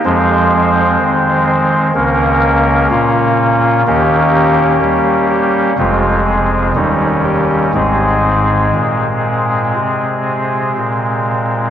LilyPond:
<<
  \new Staff \with { instrumentName = "Pipe organ" } { \time 4/4 \key aes \major \tempo 4 = 62 c''4. c''8 bes'4 f'4 | g'4. g'8 f'8 aes'8 ees'8 g'8 | aes'2. r4 | }
  \new Staff \with { instrumentName = "Pipe organ" } { \clef bass \time 4/4 \key aes \major << { <aes c'>2 <bes des'>2 | <bes des'>2 <aes c'>4 <g des'>4 | <aes c'>1 | } \\ { <f, f>4 ees4 <des, des>4 bes,4 | <ees, ees>4 g4 <f,, f,>4 <ees, ees>4 | <aes,, aes,>4 bes,4 c4 bes,4 | } >> }
>>